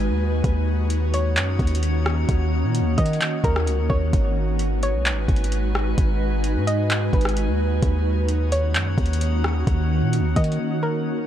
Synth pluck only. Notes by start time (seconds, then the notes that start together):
1.14 C#5
2.98 D#5
3.44 A#4
3.90 C#5
4.83 C#5
6.67 D#5
7.14 B4
8.52 C#5
10.36 D#5
10.83 A#4